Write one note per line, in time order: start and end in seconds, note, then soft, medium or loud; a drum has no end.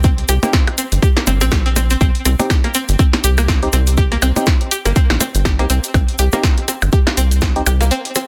0.00 0.24 C2 loud
0.00 shaker soft
0.04 0.06 C4 medium
0.04 kick loud
0.04 closed hi-hat medium
0.18 closed hi-hat soft
0.28 0.39 C2 loud
0.28 0.34 G4 medium
0.28 closed hi-hat medium
0.28 percussion blips soft
0.28 shaker loud
0.43 0.45 A#3 medium
0.43 0.52 C4 medium
0.43 0.52 D#4 medium
0.43 0.52 G4 loud
0.43 closed hi-hat soft
0.43 percussion blips medium
0.43 shaker medium
0.53 0.55 C4 loud
0.53 kick loud
0.53 snare medium
0.53 closed hi-hat medium
0.53 shaker soft
0.67 closed hi-hat soft
0.67 percussion blips soft
0.67 percussion blips medium
0.78 0.80 C4 medium
0.78 closed hi-hat loud
0.78 shaker medium
0.92 0.99 G1 medium
0.92 closed hi-hat soft
0.92 shaker medium
1.02 1.08 G4 medium
1.02 kick loud
1.02 closed hi-hat soft
1.02 percussion blips soft
1.02 shaker soft
1.17 1.19 A#3 medium
1.17 snare medium
1.17 closed hi-hat soft
1.27 1.43 G1 medium
1.27 1.31 C4 medium
1.27 closed hi-hat loud
1.27 percussion blips medium
1.27 shaker loud
1.41 1.96 A#1 medium
1.41 1.43 C4 loud
1.41 closed hi-hat soft
1.41 percussion blips soft
1.41 shaker medium
1.51 1.54 G3 loud
1.51 kick loud
1.51 snare loud
1.51 closed hi-hat medium
1.51 percussion blips medium
1.51 shaker soft
1.66 1.68 C4 loud
1.66 closed hi-hat soft
1.76 1.80 C4 medium
1.76 closed hi-hat medium
1.76 percussion blips soft
1.76 percussion blips medium
1.76 shaker medium
1.90 1.93 C4 medium
1.90 closed hi-hat soft
1.90 shaker medium
2.01 2.11 C2 loud
2.01 2.03 C4 loud
2.01 kick loud
2.01 closed hi-hat soft
2.01 shaker soft
2.15 closed hi-hat soft
2.25 2.35 C2 loud
2.25 2.28 C4 medium
2.25 closed hi-hat medium
2.25 percussion blips soft
2.25 shaker medium
2.39 2.49 C4 medium
2.39 2.49 D#4 medium
2.39 2.49 G4 loud
2.39 closed hi-hat soft
2.39 percussion blips medium
2.39 shaker medium
2.50 2.55 G4 medium
2.50 kick loud
2.50 snare medium
2.50 closed hi-hat medium
2.50 percussion blips medium
2.50 shaker soft
2.64 2.67 A#3 medium
2.64 closed hi-hat soft
2.64 percussion blips soft
2.74 2.77 C4 loud
2.74 closed hi-hat loud
2.74 shaker medium
2.88 2.96 G1 medium
2.88 closed hi-hat soft
2.88 shaker medium
2.99 3.01 C4 medium
2.99 kick loud
2.99 closed hi-hat medium
2.99 percussion blips soft
2.99 shaker soft
3.13 snare medium
3.13 closed hi-hat soft
3.13 percussion blips medium
3.24 3.68 C2 medium
3.24 3.29 G4 medium
3.24 closed hi-hat medium
3.24 shaker medium
3.37 3.41 A#3 medium
3.37 closed hi-hat soft
3.37 percussion blips soft
3.37 percussion blips medium
3.37 shaker medium
3.48 3.51 C4 loud
3.48 kick loud
3.48 snare medium
3.48 closed hi-hat medium
3.48 shaker soft
3.63 3.68 C4 medium
3.63 3.68 D#4 medium
3.63 3.68 G4 loud
3.63 closed hi-hat soft
3.73 4.17 C2 loud
3.73 3.75 C4 medium
3.73 closed hi-hat medium
3.73 percussion blips soft
3.73 shaker medium
3.87 closed hi-hat soft
3.87 shaker medium
3.97 4.03 G4 medium
3.97 kick loud
3.97 closed hi-hat medium
3.97 shaker soft
4.12 4.14 A#3 medium
4.12 closed hi-hat soft
4.12 percussion blips soft
4.22 4.32 C2 loud
4.22 4.24 C4 loud
4.22 closed hi-hat medium
4.22 percussion blips medium
4.22 shaker medium
4.36 4.46 C4 medium
4.36 4.46 D#4 medium
4.36 4.46 G4 loud
4.36 closed hi-hat soft
4.36 percussion blips medium
4.36 shaker medium
4.46 4.49 C4 medium
4.46 kick loud
4.46 snare medium
4.46 closed hi-hat medium
4.46 percussion blips soft
4.46 shaker soft
4.61 closed hi-hat soft
4.71 4.77 G4 medium
4.71 closed hi-hat medium
4.71 shaker medium
4.85 4.93 G1 medium
4.85 4.88 A#3 medium
4.85 closed hi-hat soft
4.85 percussion blips soft
4.85 shaker soft
4.96 4.98 C4 loud
4.96 kick loud
4.96 closed hi-hat medium
4.96 shaker soft
5.10 5.17 A#1 medium
5.10 snare medium
5.10 closed hi-hat soft
5.10 percussion blips medium
5.21 5.23 C4 medium
5.21 closed hi-hat medium
5.21 percussion blips soft
5.21 percussion blips medium
5.21 shaker medium
5.35 5.61 G1 medium
5.35 closed hi-hat soft
5.35 shaker medium
5.45 5.50 G4 medium
5.45 kick loud
5.45 snare medium
5.45 closed hi-hat medium
5.45 shaker soft
5.59 5.67 C2 loud
5.59 5.62 A#3 medium
5.59 5.65 C4 loud
5.59 5.65 D#4 medium
5.59 5.65 G4 loud
5.59 closed hi-hat soft
5.59 percussion blips soft
5.70 5.80 C2 loud
5.70 5.72 C4 loud
5.70 closed hi-hat medium
5.70 shaker medium
5.84 closed hi-hat soft
5.84 shaker medium
5.94 6.04 C2 loud
5.94 5.96 C4 medium
5.94 kick loud
5.94 closed hi-hat medium
5.94 percussion blips soft
5.94 percussion blips medium
5.94 shaker soft
6.08 closed hi-hat soft
6.18 6.29 C2 loud
6.18 6.24 G4 medium
6.18 closed hi-hat medium
6.18 shaker medium
6.32 6.36 A#3 medium
6.32 6.42 C4 medium
6.32 6.42 D#4 medium
6.32 6.42 G4 loud
6.32 closed hi-hat soft
6.32 percussion blips soft
6.32 percussion blips medium
6.32 shaker soft
6.43 6.46 C4 loud
6.43 kick loud
6.43 snare medium
6.43 closed hi-hat medium
6.43 shaker soft
6.58 closed hi-hat soft
6.68 6.70 C4 medium
6.68 closed hi-hat medium
6.68 percussion blips soft
6.68 shaker medium
6.82 6.90 G1 medium
6.82 closed hi-hat soft
6.82 percussion blips medium
6.82 shaker soft
6.92 6.98 G4 medium
6.92 kick loud
6.92 closed hi-hat medium
6.92 shaker soft
7.07 7.09 A#3 medium
7.07 snare medium
7.07 closed hi-hat soft
7.07 percussion blips soft
7.07 percussion blips medium
7.17 7.61 C2 medium
7.17 7.19 C4 loud
7.17 closed hi-hat medium
7.17 shaker medium
7.31 closed hi-hat soft
7.31 shaker soft
7.41 7.44 C4 medium
7.41 kick loud
7.41 snare medium
7.41 closed hi-hat medium
7.41 percussion blips soft
7.41 shaker soft
7.56 7.62 C4 medium
7.56 7.62 D#4 medium
7.56 7.62 G4 loud
7.56 closed hi-hat soft
7.66 7.91 C2 loud
7.66 7.72 G4 medium
7.66 closed hi-hat medium
7.66 percussion blips medium
7.66 shaker medium
7.81 7.83 A#3 medium
7.81 closed hi-hat soft
7.81 percussion blips soft
7.81 shaker medium
7.91 7.93 C4 loud
7.91 closed hi-hat medium
7.91 shaker soft
8.05 closed hi-hat soft
8.15 8.18 C4 medium
8.15 closed hi-hat medium
8.15 percussion blips soft
8.15 shaker medium